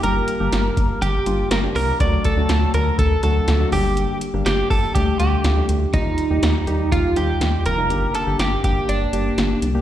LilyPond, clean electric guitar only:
\new Staff \with { instrumentName = "Clean electric guitar" } { \time 4/4 \key g \minor \tempo 4 = 122 bes'2 g'4 bes'8 bes'8 | d''8 a'4 bes'8 a'8 a'4 g'8~ | g'8 r8 g'8 a'8 g'8 g'4 r8 | ees'2 f'8 g'4 bes'8~ |
bes'8 a'8 g'8 g'8 d'4. r8 | }